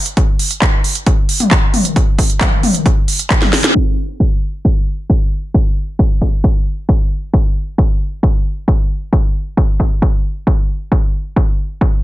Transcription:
0.06 closed hi-hat medium
0.17 kick loud
0.17 closed hi-hat medium
0.39 open hi-hat loud
0.51 closed hi-hat medium
0.62 kick loud
0.62 clap loud
0.62 closed hi-hat medium
0.84 open hi-hat medium
0.95 closed hi-hat medium
1.06 kick loud
1.06 closed hi-hat medium
1.29 open hi-hat loud
1.40 closed hi-hat medium
1.40 mid tom medium
1.51 kick loud
1.51 clap loud
1.51 closed hi-hat medium
1.74 open hi-hat medium
1.74 mid tom medium
1.85 closed hi-hat medium
1.96 kick loud
1.96 closed hi-hat medium
2.19 kick medium
2.19 open hi-hat loud
2.30 closed hi-hat medium
2.41 kick loud
2.41 clap loud
2.41 closed hi-hat medium
2.41 mid tom medium
2.63 open hi-hat medium
2.63 mid tom medium
2.74 closed hi-hat medium
2.86 kick loud
2.86 closed hi-hat medium
3.08 open hi-hat loud
3.19 closed hi-hat medium
3.30 kick loud
3.30 clap loud
3.30 closed hi-hat medium
3.42 snare medium
3.42 mid tom medium
3.53 snare medium
3.53 open hi-hat medium
3.64 snare medium
3.64 closed hi-hat medium
3.75 kick loud
4.20 kick loud
4.65 kick loud
5.10 kick loud
5.54 kick loud
5.99 kick loud
6.22 kick medium
6.44 kick loud
6.89 kick loud
7.33 kick loud
7.78 kick loud
8.23 kick loud
8.68 kick loud
9.13 kick loud
9.57 kick loud
9.80 kick medium
10.02 kick loud
10.47 kick loud
10.92 kick loud
11.36 kick loud
11.81 kick loud

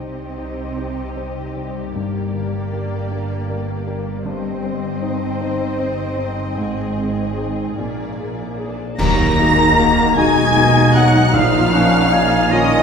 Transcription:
0.00 1.91 C2 soft
0.00 1.91 C3 soft
0.00 1.98 C3 soft
0.00 0.34 G3 soft
0.00 1.43 G3 soft
0.00 1.91 C4 soft
0.00 1.98 C4 soft
0.00 0.37 D#4 soft
0.00 0.76 G4 soft
0.00 4.21 G4 soft
0.00 0.19 C5 soft
0.00 0.34 C5 soft
0.00 1.91 D#5 soft
0.38 0.73 D#4 soft
0.38 1.16 D#4 soft
0.38 0.74 C5 soft
0.77 1.13 D#4 soft
0.77 4.67 G4 soft
0.77 1.14 C5 soft
1.17 1.52 G3 soft
1.17 1.98 D#4 soft
1.17 1.52 C5 soft
1.56 4.61 G3 soft
1.56 1.91 D#4 soft
1.56 1.92 C5 soft
1.94 6.57 G1 medium
1.94 6.57 G2 soft
1.94 4.23 G2 soft
1.94 4.21 G2 soft
1.94 4.24 A#3 soft
1.94 4.25 D5 soft
2.33 4.28 D3 soft
2.33 2.68 G3 soft
2.33 2.69 A#4 soft
2.72 3.47 D4 soft
2.72 3.07 D4 soft
2.72 3.07 A#4 soft
3.10 3.45 D4 soft
3.10 4.28 A#4 soft
3.10 3.45 A#4 soft
3.48 3.83 G3 soft
3.48 4.28 D4 soft
3.48 3.83 A#4 soft
3.86 4.27 A#3 soft
3.86 4.21 D4 soft
3.86 4.21 A#4 soft
4.24 6.61 G2 medium
4.24 6.54 G2 medium
4.24 7.78 C4 medium
4.24 6.57 C5 medium
4.24 7.77 D#5 medium
4.62 6.60 G3 soft
4.62 4.98 C4 soft
4.62 4.98 C5 soft
5.01 5.78 D#4 soft
5.01 5.37 D#4 soft
5.01 5.37 C5 soft
5.40 5.75 D#4 soft
5.40 7.81 C5 soft
5.40 5.76 C5 soft
5.79 6.14 C4 soft
5.79 7.36 D#4 soft
5.79 6.14 C5 soft
6.18 6.96 C4 soft
6.18 6.54 D#4 soft
6.18 6.54 C5 soft
6.57 7.77 G#1 medium
6.57 7.77 G#2 medium
6.57 7.81 G#2 soft
6.57 7.74 G#2 medium
6.57 8.75 G#4 soft
6.97 7.80 C4 soft
6.97 7.34 C4 soft
6.97 7.34 G#4 soft
7.37 7.81 D#4 soft
7.37 7.74 D#4 soft
7.37 7.74 G#4 soft
7.37 8.58 G#4 soft
7.77 8.77 A#1 soft
7.77 8.76 A#2 soft
7.77 9.02 A#2 soft
7.77 8.96 A#2 soft
7.77 8.77 A#3 soft
7.77 8.76 D5 soft
8.18 11.73 A#3 soft
8.18 8.55 A#3 soft
8.18 8.56 G#4 soft
8.59 9.02 D4 soft
8.59 8.95 D4 soft
8.59 9.02 G#4 soft
8.59 8.96 G#4 soft
8.98 9.37 D#2 medium
8.98 10.14 D#2 medium
8.98 10.13 D#3 medium
8.98 11.38 D#3 medium
8.98 9.36 F#3 medium
8.98 10.13 A#3 loud
8.98 10.13 D#4 medium
8.98 10.13 A#5 medium
8.98 10.14 A#5 medium
8.98 10.13 A#6 medium
8.98 concert bass drum medium
8.98 crash medium
9.39 9.78 G#3 medium
9.39 9.75 A#3 soft
9.39 11.38 D#4 medium
9.39 9.75 D#4 medium
9.39 9.75 F#4 soft
9.78 10.13 A#3 soft
9.78 10.17 A#3 medium
9.78 10.14 D#4 soft
9.78 10.95 F#4 medium
9.78 10.14 F#4 medium
10.17 11.34 B1 medium
10.17 11.34 B2 medium
10.17 10.95 G#3 medium
10.17 10.53 A#3 medium
10.17 12.11 D#4 medium
10.17 10.53 D#4 medium
10.17 10.53 F#4 medium
10.17 11.37 D#5 medium
10.17 11.36 D#5 medium
10.17 10.95 G#5 medium
10.17 10.96 G#5 medium
10.17 10.94 G#6 loud
10.57 10.92 A#3 soft
10.57 10.92 D#4 medium
10.57 10.92 F#4 medium
10.57 12.50 A#4 medium
10.95 11.34 F#3 medium
10.95 11.30 A#3 soft
10.95 11.30 D#4 medium
10.95 11.31 F#4 medium
10.95 11.38 F#4 medium
10.95 11.34 F#5 medium
10.95 11.35 F#6 medium
11.33 11.72 A#1 medium
11.33 12.83 A#1 medium
11.33 12.47 A#2 medium
11.33 12.83 A#2 medium
11.33 12.49 F3 loud
11.33 11.74 F4 medium
11.33 12.49 F5 medium
11.33 12.50 F5 medium
11.33 11.76 F5 medium
11.33 12.52 F6 medium
11.73 12.09 F3 medium
11.73 12.09 A#3 soft
11.73 12.83 A#3 medium
11.73 12.12 C#4 medium
11.73 12.09 C#4 medium
11.73 12.15 F#5 medium
12.12 12.48 A#3 soft
12.12 12.83 C#4 medium
12.12 12.48 C#4 soft
12.12 12.51 D#4 medium
12.12 12.49 F4 medium
12.12 12.52 G#5 medium
12.51 12.83 D#3 medium
12.51 12.83 A#3 medium
12.51 12.83 C#4 medium
12.51 12.83 F4 medium
12.51 12.83 D#5 medium
12.51 12.83 A#5 loud
12.51 12.83 D#6 loud

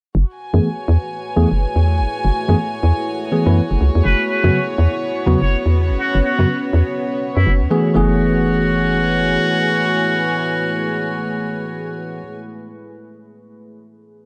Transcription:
0.15 0.24 F#1 medium
0.15 4.01 A3 medium
0.15 4.01 E4 medium
0.15 7.94 F#4 medium
0.15 4.01 G#4 medium
0.15 2.08 B4 medium
0.37 5.22 G#5 medium
0.53 0.60 F#2 medium
0.53 0.67 E3 medium
0.53 0.68 A3 medium
0.53 0.68 B3 medium
0.53 0.68 G#4 medium
0.73 7.96 C#5 medium
0.88 0.98 E2 loud
1.36 1.46 E2 medium
1.36 1.48 E3 medium
1.36 1.48 A3 medium
1.36 1.48 B3 medium
1.36 1.49 G#4 loud
1.51 1.66 F#1 medium
1.76 2.02 E2 medium
2.00 2.07 F#1 loud
2.10 7.91 C#5 medium
2.25 2.31 F#1 medium
2.49 2.55 F#2 medium
2.49 2.57 E3 medium
2.49 2.57 A3 medium
2.49 2.57 B3 medium
2.49 2.57 G#4 medium
2.83 2.93 E2 loud
3.32 3.44 E3 medium
3.32 3.44 A3 medium
3.32 3.45 B3 medium
3.32 3.45 G#4 medium
3.46 3.61 F#2 medium
3.46 3.60 E3 medium
3.46 3.60 A3 medium
3.46 3.60 B3 medium
3.46 3.61 B4 medium
3.71 3.77 F#1 medium
3.81 3.90 C#2 medium
3.95 4.02 E2 medium
4.05 4.15 F#1 loud
4.05 7.95 B3 medium
4.05 7.92 B3 medium
4.05 7.92 C#4 medium
4.05 7.92 F#4 medium
4.05 4.23 B4 loud
4.29 4.65 B4 medium
4.44 4.51 F#2 medium
4.44 4.58 C#3 medium
4.44 4.58 F#3 medium
4.44 4.58 B3 medium
4.44 4.58 F#4 medium
4.78 4.88 E2 loud
5.27 5.37 E2 medium
5.27 5.38 C#3 medium
5.27 5.39 F#3 medium
5.27 5.39 B3 medium
5.27 5.39 F#4 loud
5.42 5.56 F#1 medium
5.42 5.57 C#5 medium
5.66 5.92 E2 medium
5.90 5.97 F#1 loud
6.00 6.19 F#4 loud
6.15 6.21 F#1 medium
6.25 6.60 F#4 medium
6.39 6.46 F#2 medium
6.39 6.47 C#3 medium
6.39 6.47 F#3 medium
6.39 6.47 B3 medium
6.39 6.47 F#4 medium
6.73 6.83 E2 loud
7.37 7.46 F#2 medium
7.37 7.52 E4 medium
7.47 7.63 F#1 loud
7.61 7.68 E2 medium
7.71 7.93 E3 medium
7.71 7.94 A3 medium
7.71 7.95 B3 medium
7.71 7.95 G#4 medium
7.94 9.38 F#1 loud
7.94 12.20 E3 medium
7.94 12.21 A3 medium
7.94 12.22 A3 medium
7.94 12.22 B3 medium
7.94 12.22 E4 medium
7.94 12.22 F#4 loud
7.94 12.22 F#4 medium
7.94 12.22 G#4 medium
7.94 12.22 B4 medium
8.04 12.30 C#5 medium
8.12 12.38 G#5 medium

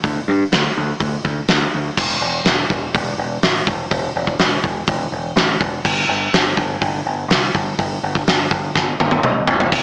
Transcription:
0.04 0.19 D2 medium
0.04 kick loud
0.04 open hi-hat medium
0.28 0.43 G2 loud
0.52 0.67 D2 medium
0.52 snare loud
0.52 open hi-hat medium
0.77 0.92 D2 loud
1.00 1.15 D2 medium
1.00 kick loud
1.00 open hi-hat medium
1.25 1.39 D2 loud
1.25 kick medium
1.48 1.64 D2 medium
1.48 snare loud
1.48 open hi-hat medium
1.75 1.89 D2 medium
1.97 2.16 E1 loud
1.97 kick loud
1.97 crash loud
2.21 2.40 E1 medium
2.45 2.64 E1 medium
2.45 snare loud
2.45 open hi-hat medium
2.70 2.88 E1 medium
2.70 kick medium
2.95 3.13 E1 medium
2.95 kick loud
2.95 open hi-hat medium
3.18 3.37 E1 medium
3.43 3.61 A1 loud
3.43 snare loud
3.43 open hi-hat medium
3.67 3.85 E1 medium
3.67 kick loud
3.91 4.09 E1 loud
3.91 kick loud
3.91 open hi-hat medium
4.16 4.34 E1 loud
4.27 kick medium
4.39 4.58 E1 loud
4.39 snare loud
4.39 open hi-hat medium
4.64 4.82 E1 medium
4.64 kick medium
4.87 5.06 E1 medium
4.87 kick loud
4.87 open hi-hat medium
5.12 5.31 E1 loud
5.36 5.54 A1 loud
5.36 snare loud
5.36 open hi-hat medium
5.61 5.79 E1 medium
5.61 kick loud
5.85 6.03 G1 loud
5.85 kick loud
5.85 crash loud
6.09 6.27 G1 loud
6.33 6.52 G1 medium
6.33 snare loud
6.33 open hi-hat medium
6.57 6.75 G1 loud
6.57 kick medium
6.81 7.00 G1 loud
6.81 kick loud
6.81 open hi-hat medium
7.06 7.24 G1 loud
7.28 7.47 C2 medium
7.28 snare loud
7.28 open hi-hat medium
7.55 7.73 G1 medium
7.55 kick medium
7.79 7.97 G1 loud
7.79 kick loud
7.79 open hi-hat medium
8.04 8.22 G1 loud
8.15 kick medium
8.27 8.46 G1 loud
8.27 snare loud
8.27 open hi-hat medium
8.51 8.69 G1 medium
8.51 kick medium
8.75 8.94 G1 medium
8.75 kick loud
8.75 snare medium
9.00 9.18 G1 loud
9.00 high tom medium
9.11 high tom medium
9.23 9.42 C2 medium
9.23 mid tom loud
9.47 9.67 G1 medium
9.47 floor tom loud
9.60 floor tom loud
9.72 9.83 E1 medium
9.72 kick loud
9.72 crash loud

